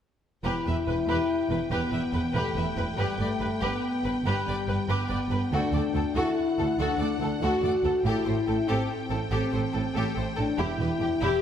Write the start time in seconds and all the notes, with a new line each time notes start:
0.44 E1 E2 E4 G4 B4 G5
0.66 E1 E2 B4 E5
0.87 E1 E2 B4
1.07 E1 E2 G4 B4
1.50 E1 E2 B4
1.70 E1 E2 B3 G4 B4
1.91 E1 E2 B4 E5
2.13 E1 E2 B4
2.33 E1 E2 A3 G4 B4
2.55 E1 E2 B4 E5
2.77 E1 E2 B4
2.96 G1 G2 G3 G4 B4
3.18 G1 G2 A3 B4 D5
3.40 G1 G2 B4
3.60 G1 G2 B3 G4 B4
4.04 G1 G2 B4
4.25 G1 G2 G3 G4 B4
4.47 G1 G2 B4 D5
4.68 G1 G2 B4
4.88 G1 G2 B3 G4 B4
5.09 G1 G2 B4 D5
5.30 G1 G2 B4
5.52 D2 D4 F#4 A4
5.72 D2 A4 D5
5.94 D2 A4
6.15 D2 E4 F#4 A4 F#5
6.58 D2 A4
6.78 D2 D4 F#4 A4
6.98 D2 A4 D5
7.18 D2 A4
7.41 D2 F#4 A4
7.62 D2 A4 D5
7.84 D2 A4
8.04 A1 A2 E4 G4 A4 G5
8.25 A1 A2 A4 C5
8.47 A1 A2 A4
8.67 A1 A2 C4 G4 A4
9.10 A1 A2 A4
9.31 A1 A2 C4 G4 A4
9.52 A1 A2 A4 C5
9.73 A1 A2 A4
9.95 A1 A2 G4 A4
10.14 A1 A2 A4 C5
10.36 A1 A2 D4 A4
10.58 E1 E2 E4 G4
10.79 E1 E2 G4 B4
11.00 E1 E2 G4
11.21 E1 E2 E4 G4